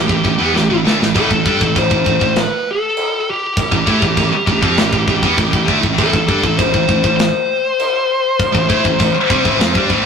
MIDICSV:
0, 0, Header, 1, 8, 480
1, 0, Start_track
1, 0, Key_signature, 0, "minor"
1, 0, Tempo, 603622
1, 914, Time_signature, 4, 2, 24, 8
1, 7997, End_track
2, 0, Start_track
2, 0, Title_t, "Lead electric guitar"
2, 0, Program_c, 0, 29
2, 0, Note_on_c, 0, 67, 80
2, 630, Note_off_c, 0, 67, 0
2, 919, Note_on_c, 0, 69, 92
2, 1411, Note_off_c, 0, 69, 0
2, 1419, Note_on_c, 0, 72, 90
2, 1901, Note_off_c, 0, 72, 0
2, 1914, Note_on_c, 0, 71, 95
2, 2141, Note_off_c, 0, 71, 0
2, 2153, Note_on_c, 0, 69, 95
2, 2625, Note_off_c, 0, 69, 0
2, 2628, Note_on_c, 0, 67, 82
2, 4500, Note_off_c, 0, 67, 0
2, 4763, Note_on_c, 0, 69, 85
2, 5234, Note_on_c, 0, 72, 101
2, 5253, Note_off_c, 0, 69, 0
2, 5690, Note_off_c, 0, 72, 0
2, 5699, Note_on_c, 0, 72, 86
2, 7997, Note_off_c, 0, 72, 0
2, 7997, End_track
3, 0, Start_track
3, 0, Title_t, "Distorted electric guitar"
3, 0, Program_c, 1, 30
3, 78, Note_on_c, 1, 52, 65
3, 80, Note_on_c, 1, 45, 60
3, 189, Note_off_c, 1, 45, 0
3, 196, Note_off_c, 1, 52, 0
3, 199, Note_on_c, 1, 45, 61
3, 207, Note_on_c, 1, 52, 69
3, 307, Note_off_c, 1, 52, 0
3, 313, Note_off_c, 1, 45, 0
3, 316, Note_on_c, 1, 52, 72
3, 327, Note_on_c, 1, 59, 87
3, 428, Note_off_c, 1, 52, 0
3, 433, Note_off_c, 1, 59, 0
3, 438, Note_on_c, 1, 45, 66
3, 446, Note_on_c, 1, 52, 61
3, 549, Note_off_c, 1, 45, 0
3, 556, Note_off_c, 1, 52, 0
3, 559, Note_on_c, 1, 45, 61
3, 566, Note_on_c, 1, 52, 64
3, 667, Note_off_c, 1, 45, 0
3, 670, Note_on_c, 1, 50, 77
3, 675, Note_off_c, 1, 52, 0
3, 679, Note_on_c, 1, 57, 90
3, 785, Note_off_c, 1, 50, 0
3, 789, Note_off_c, 1, 57, 0
3, 793, Note_on_c, 1, 45, 64
3, 796, Note_on_c, 1, 52, 68
3, 912, Note_off_c, 1, 45, 0
3, 915, Note_off_c, 1, 52, 0
3, 921, Note_on_c, 1, 45, 81
3, 930, Note_on_c, 1, 52, 99
3, 1031, Note_off_c, 1, 45, 0
3, 1035, Note_off_c, 1, 52, 0
3, 1043, Note_on_c, 1, 45, 62
3, 1046, Note_on_c, 1, 52, 60
3, 1147, Note_off_c, 1, 52, 0
3, 1150, Note_on_c, 1, 55, 80
3, 1159, Note_off_c, 1, 45, 0
3, 1160, Note_on_c, 1, 62, 98
3, 1265, Note_off_c, 1, 55, 0
3, 1270, Note_off_c, 1, 62, 0
3, 1287, Note_on_c, 1, 45, 59
3, 1290, Note_on_c, 1, 52, 68
3, 1391, Note_off_c, 1, 45, 0
3, 1397, Note_off_c, 1, 52, 0
3, 1401, Note_on_c, 1, 45, 58
3, 1406, Note_on_c, 1, 52, 61
3, 1506, Note_off_c, 1, 45, 0
3, 1511, Note_off_c, 1, 52, 0
3, 1516, Note_on_c, 1, 45, 71
3, 1521, Note_on_c, 1, 52, 80
3, 1635, Note_off_c, 1, 45, 0
3, 1638, Note_off_c, 1, 52, 0
3, 1646, Note_on_c, 1, 52, 68
3, 1647, Note_on_c, 1, 45, 62
3, 1756, Note_off_c, 1, 45, 0
3, 1757, Note_off_c, 1, 52, 0
3, 1765, Note_on_c, 1, 45, 62
3, 1766, Note_on_c, 1, 52, 67
3, 1952, Note_off_c, 1, 45, 0
3, 1953, Note_off_c, 1, 52, 0
3, 2958, Note_on_c, 1, 45, 64
3, 2958, Note_on_c, 1, 52, 69
3, 3072, Note_off_c, 1, 52, 0
3, 3075, Note_on_c, 1, 57, 89
3, 3076, Note_off_c, 1, 45, 0
3, 3077, Note_on_c, 1, 64, 92
3, 3188, Note_off_c, 1, 57, 0
3, 3189, Note_off_c, 1, 64, 0
3, 3202, Note_on_c, 1, 45, 57
3, 3202, Note_on_c, 1, 52, 61
3, 3296, Note_off_c, 1, 45, 0
3, 3299, Note_off_c, 1, 52, 0
3, 3305, Note_on_c, 1, 45, 66
3, 3309, Note_on_c, 1, 52, 61
3, 3429, Note_off_c, 1, 45, 0
3, 3432, Note_off_c, 1, 52, 0
3, 3551, Note_on_c, 1, 45, 57
3, 3553, Note_on_c, 1, 52, 70
3, 3670, Note_off_c, 1, 45, 0
3, 3673, Note_on_c, 1, 53, 93
3, 3674, Note_off_c, 1, 52, 0
3, 3678, Note_on_c, 1, 60, 102
3, 3787, Note_off_c, 1, 53, 0
3, 3789, Note_off_c, 1, 60, 0
3, 3797, Note_on_c, 1, 52, 73
3, 3798, Note_on_c, 1, 45, 65
3, 3912, Note_off_c, 1, 52, 0
3, 3913, Note_off_c, 1, 45, 0
3, 3922, Note_on_c, 1, 52, 64
3, 3923, Note_on_c, 1, 45, 62
3, 4026, Note_off_c, 1, 45, 0
3, 4026, Note_off_c, 1, 52, 0
3, 4036, Note_on_c, 1, 45, 68
3, 4036, Note_on_c, 1, 52, 71
3, 4146, Note_off_c, 1, 52, 0
3, 4152, Note_off_c, 1, 45, 0
3, 4155, Note_on_c, 1, 52, 85
3, 4164, Note_on_c, 1, 59, 83
3, 4265, Note_off_c, 1, 52, 0
3, 4270, Note_on_c, 1, 45, 63
3, 4271, Note_off_c, 1, 59, 0
3, 4274, Note_on_c, 1, 52, 64
3, 4374, Note_off_c, 1, 52, 0
3, 4376, Note_off_c, 1, 45, 0
3, 4384, Note_on_c, 1, 52, 70
3, 4385, Note_on_c, 1, 45, 68
3, 4490, Note_off_c, 1, 45, 0
3, 4494, Note_on_c, 1, 50, 86
3, 4501, Note_off_c, 1, 52, 0
3, 4504, Note_on_c, 1, 57, 95
3, 4607, Note_off_c, 1, 50, 0
3, 4610, Note_on_c, 1, 45, 61
3, 4612, Note_off_c, 1, 57, 0
3, 4615, Note_on_c, 1, 52, 79
3, 4711, Note_off_c, 1, 45, 0
3, 4714, Note_off_c, 1, 52, 0
3, 4721, Note_on_c, 1, 45, 95
3, 4723, Note_on_c, 1, 52, 111
3, 4847, Note_off_c, 1, 45, 0
3, 4852, Note_off_c, 1, 52, 0
3, 4857, Note_on_c, 1, 45, 51
3, 4862, Note_on_c, 1, 52, 75
3, 4981, Note_off_c, 1, 52, 0
3, 4985, Note_on_c, 1, 55, 85
3, 4986, Note_off_c, 1, 45, 0
3, 4992, Note_on_c, 1, 62, 101
3, 5102, Note_off_c, 1, 55, 0
3, 5106, Note_off_c, 1, 62, 0
3, 5107, Note_on_c, 1, 45, 59
3, 5110, Note_on_c, 1, 52, 65
3, 5219, Note_off_c, 1, 45, 0
3, 5223, Note_off_c, 1, 52, 0
3, 5228, Note_on_c, 1, 45, 57
3, 5233, Note_on_c, 1, 52, 58
3, 5332, Note_off_c, 1, 45, 0
3, 5340, Note_off_c, 1, 52, 0
3, 5341, Note_on_c, 1, 45, 62
3, 5350, Note_on_c, 1, 52, 72
3, 5468, Note_off_c, 1, 45, 0
3, 5472, Note_off_c, 1, 52, 0
3, 5481, Note_on_c, 1, 45, 56
3, 5482, Note_on_c, 1, 52, 66
3, 5582, Note_off_c, 1, 45, 0
3, 5588, Note_off_c, 1, 52, 0
3, 5592, Note_on_c, 1, 45, 61
3, 5597, Note_on_c, 1, 52, 73
3, 5785, Note_off_c, 1, 45, 0
3, 5788, Note_off_c, 1, 52, 0
3, 6797, Note_on_c, 1, 45, 56
3, 6799, Note_on_c, 1, 52, 68
3, 6907, Note_off_c, 1, 52, 0
3, 6911, Note_on_c, 1, 57, 81
3, 6915, Note_off_c, 1, 45, 0
3, 6922, Note_on_c, 1, 64, 91
3, 7024, Note_off_c, 1, 57, 0
3, 7030, Note_off_c, 1, 64, 0
3, 7037, Note_on_c, 1, 52, 61
3, 7039, Note_on_c, 1, 45, 63
3, 7143, Note_off_c, 1, 45, 0
3, 7147, Note_off_c, 1, 52, 0
3, 7153, Note_on_c, 1, 45, 58
3, 7156, Note_on_c, 1, 52, 65
3, 7264, Note_off_c, 1, 45, 0
3, 7274, Note_off_c, 1, 52, 0
3, 7400, Note_on_c, 1, 48, 86
3, 7401, Note_on_c, 1, 55, 107
3, 7505, Note_off_c, 1, 48, 0
3, 7508, Note_off_c, 1, 55, 0
3, 7508, Note_on_c, 1, 45, 86
3, 7511, Note_on_c, 1, 52, 102
3, 7621, Note_off_c, 1, 45, 0
3, 7624, Note_off_c, 1, 52, 0
3, 7624, Note_on_c, 1, 53, 88
3, 7637, Note_on_c, 1, 60, 97
3, 7732, Note_off_c, 1, 60, 0
3, 7735, Note_on_c, 1, 55, 78
3, 7740, Note_on_c, 1, 62, 82
3, 7741, Note_off_c, 1, 53, 0
3, 7856, Note_off_c, 1, 55, 0
3, 7858, Note_off_c, 1, 62, 0
3, 7867, Note_on_c, 1, 45, 82
3, 7877, Note_on_c, 1, 52, 102
3, 7974, Note_off_c, 1, 45, 0
3, 7982, Note_off_c, 1, 52, 0
3, 7997, End_track
4, 0, Start_track
4, 0, Title_t, "Distorted electric guitar"
4, 0, Program_c, 2, 30
4, 4759, Note_on_c, 2, 45, 91
4, 4765, Note_on_c, 2, 52, 101
4, 4863, Note_off_c, 2, 45, 0
4, 4869, Note_off_c, 2, 52, 0
4, 7772, Note_on_c, 2, 62, 93
4, 7875, Note_off_c, 2, 62, 0
4, 7997, End_track
5, 0, Start_track
5, 0, Title_t, "Picked electric bass"
5, 0, Program_c, 3, 34
5, 76, Note_on_c, 3, 33, 80
5, 186, Note_off_c, 3, 33, 0
5, 196, Note_on_c, 3, 33, 80
5, 306, Note_off_c, 3, 33, 0
5, 321, Note_on_c, 3, 40, 89
5, 429, Note_off_c, 3, 40, 0
5, 442, Note_on_c, 3, 33, 69
5, 550, Note_off_c, 3, 33, 0
5, 556, Note_on_c, 3, 33, 75
5, 662, Note_off_c, 3, 33, 0
5, 667, Note_on_c, 3, 38, 91
5, 782, Note_off_c, 3, 38, 0
5, 800, Note_on_c, 3, 33, 68
5, 909, Note_off_c, 3, 33, 0
5, 918, Note_on_c, 3, 33, 75
5, 1028, Note_off_c, 3, 33, 0
5, 1036, Note_on_c, 3, 33, 80
5, 1147, Note_off_c, 3, 33, 0
5, 1159, Note_on_c, 3, 43, 85
5, 1269, Note_off_c, 3, 43, 0
5, 1278, Note_on_c, 3, 33, 76
5, 1388, Note_off_c, 3, 33, 0
5, 1402, Note_on_c, 3, 33, 82
5, 1510, Note_off_c, 3, 33, 0
5, 1518, Note_on_c, 3, 33, 73
5, 1628, Note_off_c, 3, 33, 0
5, 1640, Note_on_c, 3, 33, 84
5, 1749, Note_off_c, 3, 33, 0
5, 1759, Note_on_c, 3, 33, 73
5, 1980, Note_off_c, 3, 33, 0
5, 2958, Note_on_c, 3, 33, 78
5, 3069, Note_off_c, 3, 33, 0
5, 3079, Note_on_c, 3, 45, 99
5, 3189, Note_off_c, 3, 45, 0
5, 3197, Note_on_c, 3, 33, 80
5, 3308, Note_off_c, 3, 33, 0
5, 3320, Note_on_c, 3, 33, 77
5, 3429, Note_off_c, 3, 33, 0
5, 3555, Note_on_c, 3, 33, 89
5, 3667, Note_off_c, 3, 33, 0
5, 3674, Note_on_c, 3, 41, 87
5, 3786, Note_off_c, 3, 41, 0
5, 3800, Note_on_c, 3, 33, 82
5, 3910, Note_off_c, 3, 33, 0
5, 3921, Note_on_c, 3, 33, 82
5, 4030, Note_off_c, 3, 33, 0
5, 4035, Note_on_c, 3, 33, 79
5, 4146, Note_off_c, 3, 33, 0
5, 4159, Note_on_c, 3, 40, 83
5, 4269, Note_off_c, 3, 40, 0
5, 4275, Note_on_c, 3, 33, 78
5, 4386, Note_off_c, 3, 33, 0
5, 4396, Note_on_c, 3, 33, 70
5, 4507, Note_off_c, 3, 33, 0
5, 4521, Note_on_c, 3, 38, 83
5, 4630, Note_off_c, 3, 38, 0
5, 4640, Note_on_c, 3, 33, 77
5, 4749, Note_off_c, 3, 33, 0
5, 4758, Note_on_c, 3, 33, 75
5, 4868, Note_off_c, 3, 33, 0
5, 4876, Note_on_c, 3, 33, 73
5, 4987, Note_off_c, 3, 33, 0
5, 4997, Note_on_c, 3, 43, 95
5, 5107, Note_off_c, 3, 43, 0
5, 5112, Note_on_c, 3, 33, 84
5, 5225, Note_off_c, 3, 33, 0
5, 5240, Note_on_c, 3, 33, 77
5, 5349, Note_off_c, 3, 33, 0
5, 5358, Note_on_c, 3, 33, 86
5, 5468, Note_off_c, 3, 33, 0
5, 5478, Note_on_c, 3, 33, 83
5, 5588, Note_off_c, 3, 33, 0
5, 5596, Note_on_c, 3, 33, 80
5, 5818, Note_off_c, 3, 33, 0
5, 6795, Note_on_c, 3, 33, 80
5, 6906, Note_off_c, 3, 33, 0
5, 6916, Note_on_c, 3, 45, 91
5, 7026, Note_off_c, 3, 45, 0
5, 7037, Note_on_c, 3, 33, 79
5, 7146, Note_off_c, 3, 33, 0
5, 7154, Note_on_c, 3, 33, 77
5, 7259, Note_off_c, 3, 33, 0
5, 7393, Note_on_c, 3, 36, 99
5, 7504, Note_off_c, 3, 36, 0
5, 7519, Note_on_c, 3, 33, 92
5, 7625, Note_off_c, 3, 33, 0
5, 7630, Note_on_c, 3, 41, 91
5, 7742, Note_off_c, 3, 41, 0
5, 7754, Note_on_c, 3, 43, 99
5, 7864, Note_off_c, 3, 43, 0
5, 7874, Note_on_c, 3, 33, 90
5, 7970, Note_off_c, 3, 33, 0
5, 7997, End_track
6, 0, Start_track
6, 0, Title_t, "Muted distorted electric guitar strokes"
6, 3438, Note_on_c, 9, 29, 63
6, 3518, Note_off_c, 9, 29, 0
6, 7274, Note_on_c, 9, 29, 57
6, 7353, Note_off_c, 9, 29, 0
6, 7997, End_track
7, 0, Start_track
7, 0, Title_t, "Muted picked electric bass strokes"
7, 7264, Note_on_c, 9, 29, 41
7, 7343, Note_off_c, 9, 29, 0
7, 7997, End_track
8, 0, Start_track
8, 0, Title_t, "Drums"
8, 75, Note_on_c, 9, 36, 88
8, 154, Note_off_c, 9, 36, 0
8, 196, Note_on_c, 9, 36, 78
8, 276, Note_off_c, 9, 36, 0
8, 447, Note_on_c, 9, 38, 63
8, 526, Note_off_c, 9, 38, 0
8, 691, Note_on_c, 9, 38, 84
8, 771, Note_off_c, 9, 38, 0
8, 813, Note_on_c, 9, 38, 77
8, 892, Note_off_c, 9, 38, 0
8, 920, Note_on_c, 9, 36, 91
8, 921, Note_on_c, 9, 52, 55
8, 999, Note_off_c, 9, 36, 0
8, 1000, Note_off_c, 9, 52, 0
8, 1039, Note_on_c, 9, 36, 76
8, 1119, Note_off_c, 9, 36, 0
8, 1159, Note_on_c, 9, 36, 83
8, 1238, Note_off_c, 9, 36, 0
8, 1281, Note_on_c, 9, 36, 88
8, 1360, Note_off_c, 9, 36, 0
8, 1400, Note_on_c, 9, 36, 89
8, 1402, Note_on_c, 9, 52, 53
8, 1480, Note_off_c, 9, 36, 0
8, 1481, Note_off_c, 9, 52, 0
8, 1519, Note_on_c, 9, 36, 76
8, 1599, Note_off_c, 9, 36, 0
8, 1640, Note_on_c, 9, 36, 79
8, 1719, Note_off_c, 9, 36, 0
8, 1760, Note_on_c, 9, 36, 79
8, 1839, Note_off_c, 9, 36, 0
8, 1876, Note_on_c, 9, 52, 55
8, 1882, Note_on_c, 9, 38, 99
8, 1955, Note_off_c, 9, 52, 0
8, 1962, Note_off_c, 9, 38, 0
8, 2360, Note_on_c, 9, 52, 57
8, 2440, Note_off_c, 9, 52, 0
8, 2837, Note_on_c, 9, 52, 57
8, 2839, Note_on_c, 9, 36, 108
8, 2916, Note_off_c, 9, 52, 0
8, 2918, Note_off_c, 9, 36, 0
8, 2958, Note_on_c, 9, 36, 77
8, 3037, Note_off_c, 9, 36, 0
8, 3078, Note_on_c, 9, 36, 80
8, 3158, Note_off_c, 9, 36, 0
8, 3198, Note_on_c, 9, 36, 82
8, 3278, Note_off_c, 9, 36, 0
8, 3316, Note_on_c, 9, 52, 55
8, 3318, Note_on_c, 9, 36, 82
8, 3396, Note_off_c, 9, 52, 0
8, 3397, Note_off_c, 9, 36, 0
8, 3557, Note_on_c, 9, 36, 81
8, 3636, Note_off_c, 9, 36, 0
8, 3678, Note_on_c, 9, 36, 84
8, 3758, Note_off_c, 9, 36, 0
8, 3795, Note_on_c, 9, 52, 62
8, 3802, Note_on_c, 9, 38, 109
8, 3875, Note_off_c, 9, 52, 0
8, 3881, Note_off_c, 9, 38, 0
8, 3917, Note_on_c, 9, 36, 78
8, 3997, Note_off_c, 9, 36, 0
8, 4037, Note_on_c, 9, 36, 77
8, 4117, Note_off_c, 9, 36, 0
8, 4158, Note_on_c, 9, 36, 83
8, 4237, Note_off_c, 9, 36, 0
8, 4277, Note_on_c, 9, 52, 55
8, 4278, Note_on_c, 9, 36, 80
8, 4357, Note_off_c, 9, 52, 0
8, 4358, Note_off_c, 9, 36, 0
8, 4398, Note_on_c, 9, 36, 83
8, 4478, Note_off_c, 9, 36, 0
8, 4518, Note_on_c, 9, 36, 76
8, 4597, Note_off_c, 9, 36, 0
8, 4639, Note_on_c, 9, 36, 77
8, 4718, Note_off_c, 9, 36, 0
8, 4759, Note_on_c, 9, 36, 85
8, 4761, Note_on_c, 9, 52, 55
8, 4838, Note_off_c, 9, 36, 0
8, 4840, Note_off_c, 9, 52, 0
8, 4878, Note_on_c, 9, 36, 75
8, 4957, Note_off_c, 9, 36, 0
8, 4998, Note_on_c, 9, 36, 86
8, 5078, Note_off_c, 9, 36, 0
8, 5117, Note_on_c, 9, 36, 88
8, 5197, Note_off_c, 9, 36, 0
8, 5239, Note_on_c, 9, 36, 91
8, 5243, Note_on_c, 9, 52, 54
8, 5319, Note_off_c, 9, 36, 0
8, 5323, Note_off_c, 9, 52, 0
8, 5359, Note_on_c, 9, 36, 83
8, 5439, Note_off_c, 9, 36, 0
8, 5477, Note_on_c, 9, 36, 82
8, 5557, Note_off_c, 9, 36, 0
8, 5597, Note_on_c, 9, 36, 83
8, 5677, Note_off_c, 9, 36, 0
8, 5719, Note_on_c, 9, 52, 53
8, 5726, Note_on_c, 9, 38, 119
8, 5799, Note_off_c, 9, 52, 0
8, 5805, Note_off_c, 9, 38, 0
8, 6198, Note_on_c, 9, 52, 53
8, 6277, Note_off_c, 9, 52, 0
8, 6676, Note_on_c, 9, 36, 94
8, 6679, Note_on_c, 9, 52, 55
8, 6755, Note_off_c, 9, 36, 0
8, 6758, Note_off_c, 9, 52, 0
8, 6796, Note_on_c, 9, 36, 78
8, 6876, Note_off_c, 9, 36, 0
8, 6917, Note_on_c, 9, 36, 89
8, 6996, Note_off_c, 9, 36, 0
8, 7037, Note_on_c, 9, 36, 83
8, 7117, Note_off_c, 9, 36, 0
8, 7156, Note_on_c, 9, 36, 76
8, 7163, Note_on_c, 9, 52, 57
8, 7236, Note_off_c, 9, 36, 0
8, 7243, Note_off_c, 9, 52, 0
8, 7396, Note_on_c, 9, 36, 101
8, 7476, Note_off_c, 9, 36, 0
8, 7517, Note_on_c, 9, 36, 87
8, 7596, Note_off_c, 9, 36, 0
8, 7638, Note_on_c, 9, 52, 55
8, 7644, Note_on_c, 9, 38, 108
8, 7717, Note_off_c, 9, 52, 0
8, 7724, Note_off_c, 9, 38, 0
8, 7754, Note_on_c, 9, 36, 102
8, 7834, Note_off_c, 9, 36, 0
8, 7873, Note_on_c, 9, 36, 75
8, 7952, Note_off_c, 9, 36, 0
8, 7997, End_track
0, 0, End_of_file